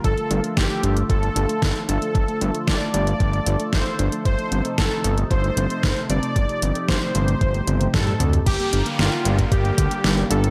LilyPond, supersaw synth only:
\new Staff \with { instrumentName = "Supersaw synth" } { \time 4/4 \key g \minor \tempo 4 = 114 a'8 r8 g'8 r8 a'4. a'8~ | a'4 d''2 c''8 r8 | c''8 r8 a'8 r8 c''4. d''8~ | d''4 c''2 a'8 r8 |
g'8 r8 f'8 r8 g'4. a'8 | }